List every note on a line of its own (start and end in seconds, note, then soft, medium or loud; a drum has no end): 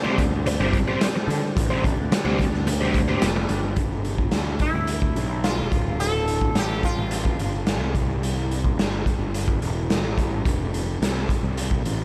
0.00 3.74 C4 medium
0.00 3.73 D4 medium
0.00 3.73 G4 medium
0.00 1.54 C5 medium
0.00 3.74 D5 medium
0.04 0.23 G3 medium
0.04 0.22 C4 medium
0.04 0.22 G4 medium
0.04 0.22 C5 medium
0.04 high conga medium
0.18 0.55 D2 medium
0.18 kick medium
0.18 closed hi-hat medium
0.18 high conga medium
0.18 low conga medium
0.46 muted overdriven electric guitar stroke soft
0.46 closed hi-hat medium
0.59 0.84 G1 medium
0.59 0.78 G3 medium
0.59 0.78 C4 medium
0.59 0.78 G4 medium
0.59 0.77 C5 medium
0.73 kick medium
0.73 closed hi-hat medium
0.73 high conga medium
0.87 1.05 G3 medium
0.87 1.05 C4 medium
0.87 1.05 G4 medium
0.87 1.05 C5 medium
0.87 low conga medium
1.01 snare loud
1.01 closed hi-hat loud
1.16 muted overdriven electric guitar stroke medium
1.28 1.40 D3 medium
1.28 closed hi-hat medium
1.28 low conga medium
1.55 1.93 A1 medium
1.55 3.75 B4 medium
1.55 kick loud
1.55 closed hi-hat medium
1.70 1.82 G3 medium
1.70 1.83 C4 medium
1.70 1.83 G4 medium
1.70 1.84 C5 medium
1.84 muted overdriven electric guitar stroke soft
1.84 kick medium
1.84 closed hi-hat medium
1.97 2.10 D2 medium
1.97 high conga medium
2.12 muted overdriven electric guitar stroke soft
2.12 snare loud
2.12 closed hi-hat loud
2.25 2.50 D2 medium
2.25 2.44 G3 medium
2.25 2.44 C4 medium
2.25 2.43 G4 medium
2.25 2.43 C5 medium
2.25 high conga medium
2.39 kick medium
2.39 snare soft
2.39 closed hi-hat medium
2.39 low conga medium
2.52 3.15 D2 medium
2.52 snare soft
2.67 muted overdriven electric guitar stroke soft
2.67 closed hi-hat loud
2.80 2.99 G3 medium
2.80 2.99 C4 medium
2.80 2.98 G4 loud
2.80 2.98 C5 medium
2.94 kick medium
2.94 closed hi-hat medium
2.94 high conga medium
3.08 3.26 G3 medium
3.08 3.26 C4 medium
3.08 3.26 G4 medium
3.08 3.26 C5 medium
3.08 high conga medium
3.22 3.47 F1 medium
3.22 snare loud
3.22 closed hi-hat loud
3.22 high conga medium
3.36 muted overdriven electric guitar stroke medium
3.36 high conga medium
3.49 3.74 G1 medium
3.49 closed hi-hat medium
3.49 low conga medium
3.63 low conga medium
3.76 4.27 G1 medium
3.76 kick loud
3.76 closed hi-hat medium
4.05 closed hi-hat medium
4.18 kick medium
4.31 4.57 D2 medium
4.31 snare loud
4.31 closed hi-hat medium
4.59 5.47 E4 medium
4.59 kick medium
4.59 closed hi-hat soft
4.74 5.12 D2 medium
4.87 closed hi-hat medium
5.02 kick medium
5.16 5.60 B1 medium
5.16 closed hi-hat medium
5.44 6.00 F4 medium
5.44 snare loud
5.44 closed hi-hat medium
5.58 5.71 E1 medium
5.72 6.47 D1 medium
5.72 kick medium
5.72 closed hi-hat medium
6.00 6.57 A4 medium
6.00 closed hi-hat medium
6.28 closed hi-hat medium
6.41 kick medium
6.55 6.80 A1 medium
6.55 6.84 G4 medium
6.55 snare loud
6.55 closed hi-hat medium
6.83 7.36 F4 medium
6.83 kick medium
6.83 closed hi-hat medium
6.97 7.35 A1 medium
7.11 closed hi-hat medium
7.25 kick medium
7.39 7.79 G1 medium
7.39 closed hi-hat medium
7.67 snare loud
7.67 closed hi-hat medium
7.79 7.93 C2 medium
7.95 8.70 C2 medium
7.95 kick medium
7.95 closed hi-hat medium
8.23 closed hi-hat medium
8.51 closed hi-hat medium
8.64 kick medium
8.77 9.02 G1 medium
8.77 snare loud
8.77 closed hi-hat medium
9.06 kick medium
9.06 closed hi-hat medium
9.19 9.57 G1 medium
9.34 closed hi-hat medium
9.48 kick medium
9.62 10.03 E1 medium
9.62 closed hi-hat medium
9.90 snare loud
9.90 closed hi-hat medium
10.03 10.41 A1 medium
10.18 kick medium
10.18 closed hi-hat medium
10.45 10.95 F1 loud
10.45 kick loud
10.45 closed hi-hat medium
10.74 closed hi-hat medium
11.01 11.26 C2 medium
11.01 snare loud
11.01 closed hi-hat medium
11.29 kick medium
11.29 closed hi-hat medium
11.43 11.80 C2 medium
11.57 closed hi-hat medium
11.71 kick medium
11.85 12.04 A1 medium
11.85 closed hi-hat medium